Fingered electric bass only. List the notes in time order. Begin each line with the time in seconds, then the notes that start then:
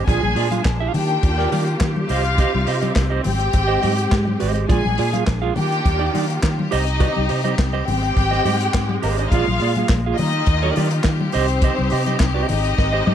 0.08 A#1
0.23 A#1
0.36 A#2
0.65 A#1
0.94 D#3
1.24 D#2
1.52 D#3
1.81 D#3
2.10 C2
2.55 C2
2.68 C3
2.97 C2
3.25 G#1
3.54 G#1
3.84 G#2
4.12 G#2
4.42 G#1
4.70 A#1
4.86 A#1
4.99 A#2
5.28 A#1
5.58 D#3
5.86 D#2
6.15 D#3
6.43 D#3
6.73 C2
7.18 C2
7.31 C3
7.59 C2
7.88 G#1
8.17 G#1
8.45 G#2
8.75 G#2
9.04 G#1
9.32 A#1
9.47 A#1
9.61 A#2
9.90 A#1
10.19 D#3
10.48 D#2
10.77 D#3
11.05 D#3
11.35 C2
11.80 C2
11.93 C3
12.20 C2
12.50 G#1
12.79 G#1
13.07 G#2